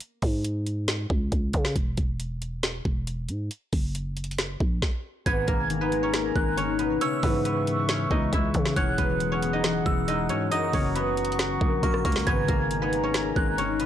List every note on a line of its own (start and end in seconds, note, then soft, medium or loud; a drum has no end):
0.00 1.26 A#3 medium
0.00 0.16 A#4 medium
0.00 closed hi-hat medium
0.22 1.07 G#2 loud
0.22 kick medium
0.22 open hi-hat medium
0.44 closed hi-hat loud
0.67 closed hi-hat medium
0.88 snare loud
0.88 closed hi-hat medium
1.10 1.31 C#2 loud
1.10 kick loud
1.32 1.53 C#2 loud
1.32 kick loud
1.32 closed hi-hat medium
1.53 1.75 C#3 loud
1.53 kick loud
1.53 closed hi-hat medium
1.65 snare loud
1.76 1.97 E1 loud
1.76 kick loud
1.76 closed hi-hat medium
1.97 2.82 E1 loud
1.97 kick loud
1.97 closed hi-hat medium
2.20 closed hi-hat medium
2.42 closed hi-hat medium
2.63 snare loud
2.63 closed hi-hat medium
2.85 3.31 E1 loud
2.85 kick loud
3.07 closed hi-hat medium
3.29 3.50 G#2 loud
3.29 closed hi-hat medium
3.51 closed hi-hat medium
3.73 4.57 F#1 loud
3.73 kick loud
3.73 open hi-hat medium
3.95 closed hi-hat loud
4.17 closed hi-hat medium
4.24 closed hi-hat medium
4.31 closed hi-hat medium
4.38 snare loud
4.38 closed hi-hat medium
4.60 4.81 A#1 loud
4.60 kick loud
4.82 kick loud
4.82 snare medium
5.26 5.47 G#1 loud
5.26 5.53 G#2 medium
5.26 6.99 A#3 medium
5.26 5.53 B3 medium
5.26 5.53 B4 medium
5.26 6.99 G#5 medium
5.26 6.99 A#5 loud
5.26 6.32 G#6 loud
5.26 kick loud
5.26 closed hi-hat medium
5.47 6.32 G#1 loud
5.47 5.75 B2 medium
5.47 5.87 A#3 medium
5.47 5.87 A#4 medium
5.47 kick loud
5.47 closed hi-hat medium
5.70 6.56 D#3 medium
5.70 closed hi-hat medium
5.81 6.79 B3 medium
5.81 6.79 B4 medium
5.92 6.34 G#3 loud
5.92 closed hi-hat medium
6.03 6.58 C#4 medium
6.03 6.57 C#5 medium
6.14 7.73 A#3 medium
6.14 snare loud
6.14 closed hi-hat medium
6.35 6.99 G#1 loud
6.35 6.62 G#3 medium
6.35 6.97 F#6 medium
6.35 kick loud
6.57 6.84 D#3 loud
6.57 7.02 C#4 medium
6.57 7.01 C#5 medium
6.57 closed hi-hat medium
6.79 7.06 B2 medium
6.79 7.23 B3 soft
6.79 7.22 B4 medium
6.79 closed hi-hat medium
7.01 8.81 C#3 medium
7.01 7.89 C#4 medium
7.01 8.75 B4 medium
7.01 7.88 C#5 loud
7.01 8.75 E5 medium
7.01 8.75 C#6 medium
7.01 8.29 E6 loud
7.01 closed hi-hat medium
7.23 8.07 G#2 loud
7.23 8.53 E3 medium
7.23 7.45 B3 medium
7.23 7.45 B4 medium
7.23 kick loud
7.23 open hi-hat medium
7.45 8.32 G#3 medium
7.45 8.99 B3 medium
7.45 8.98 B4 medium
7.45 closed hi-hat medium
7.67 8.10 B3 loud
7.67 closed hi-hat medium
7.89 10.79 C#4 medium
7.89 8.77 C#4 medium
7.89 8.76 C#5 medium
7.89 snare loud
7.89 closed hi-hat medium
8.11 8.32 C#2 loud
8.11 9.42 B3 medium
8.11 8.39 D#4 medium
8.11 8.39 D#5 medium
8.11 kick loud
8.33 8.54 C#2 loud
8.33 8.81 G#3 medium
8.33 9.59 E4 medium
8.33 9.59 E5 medium
8.33 kick loud
8.33 closed hi-hat medium
8.54 8.76 C#3 loud
8.54 8.75 E3 medium
8.54 kick loud
8.54 closed hi-hat medium
8.66 snare loud
8.76 8.97 E1 loud
8.76 9.63 E3 medium
8.76 9.32 C#4 medium
8.76 10.50 G#4 medium
8.76 9.31 C#5 loud
8.76 10.50 F#5 medium
8.76 9.82 F#6 loud
8.76 kick loud
8.76 closed hi-hat medium
8.98 9.82 E1 loud
8.98 10.29 F#3 medium
8.98 10.96 B3 medium
8.98 10.95 B4 medium
8.98 kick loud
8.98 closed hi-hat medium
9.20 10.07 G#3 medium
9.20 closed hi-hat medium
9.32 10.30 C#4 medium
9.32 10.29 C#5 medium
9.42 9.86 B3 medium
9.42 closed hi-hat medium
9.53 10.08 D#4 medium
9.53 10.08 D#5 medium
9.64 10.57 E3 medium
9.64 snare loud
9.64 closed hi-hat medium
9.86 10.31 E1 loud
9.86 11.67 B3 medium
9.86 10.48 E6 medium
9.86 kick loud
10.08 10.57 G#3 loud
10.08 10.52 D#4 medium
10.08 10.51 D#5 medium
10.08 closed hi-hat medium
10.29 10.51 G#2 loud
10.29 10.57 F#3 medium
10.29 10.74 C#4 medium
10.29 10.73 C#5 medium
10.29 closed hi-hat medium
10.51 12.32 F#2 loud
10.51 13.23 D#4 medium
10.51 12.30 D#5 loud
10.51 12.10 F#5 medium
10.51 12.10 A#5 medium
10.51 12.10 C#6 loud
10.51 11.79 D#6 loud
10.51 closed hi-hat medium
10.73 11.58 F#1 loud
10.73 12.04 C#3 medium
10.73 13.04 C#4 medium
10.73 12.65 C#5 medium
10.73 kick loud
10.73 open hi-hat medium
10.95 11.82 F#3 medium
10.95 11.89 B3 medium
10.95 11.89 B4 medium
10.95 closed hi-hat medium
11.17 closed hi-hat medium
11.25 closed hi-hat medium
11.32 closed hi-hat medium
11.39 13.86 C#4 medium
11.39 snare loud
11.39 closed hi-hat medium
11.61 11.82 A#1 loud
11.61 12.55 A#3 medium
11.61 kick loud
11.83 12.04 A#1 loud
11.83 12.10 F#3 medium
11.83 12.05 A#3 medium
11.83 12.05 A#4 medium
11.83 12.04 C#6 medium
11.83 kick loud
11.83 closed hi-hat medium
11.94 cross-stick medium
12.05 12.26 C#2 loud
12.05 12.32 C#3 medium
12.05 12.33 A#3 medium
12.05 12.33 A#4 medium
12.05 12.26 C#6 medium
12.05 kick loud
12.05 closed hi-hat medium
12.12 snare loud
12.12 closed hi-hat medium
12.20 closed hi-hat soft
12.27 12.48 G#1 loud
12.27 12.54 G#2 medium
12.27 13.86 A#3 medium
12.27 12.54 B3 medium
12.27 12.54 B4 medium
12.27 13.86 G#5 medium
12.27 13.86 A#5 loud
12.27 13.32 G#6 loud
12.27 kick loud
12.27 closed hi-hat medium
12.48 13.33 G#1 loud
12.48 12.76 B2 medium
12.48 12.88 A#3 medium
12.48 12.88 A#4 medium
12.48 kick loud
12.48 closed hi-hat medium
12.71 13.57 D#3 medium
12.71 closed hi-hat medium
12.82 13.80 B3 medium
12.82 13.79 B4 medium
12.93 13.35 G#3 loud
12.93 closed hi-hat medium
13.03 13.58 C#4 medium
13.03 13.58 C#5 medium
13.14 13.86 A#3 medium
13.14 snare loud
13.14 closed hi-hat medium
13.36 13.86 G#1 loud
13.36 13.63 G#3 medium
13.36 13.86 F#6 medium
13.36 kick loud
13.58 13.85 D#3 loud
13.58 13.86 C#4 medium
13.58 13.86 C#5 medium
13.58 closed hi-hat medium
13.80 13.86 B2 medium
13.80 13.86 B3 soft
13.80 13.86 B4 medium
13.80 closed hi-hat medium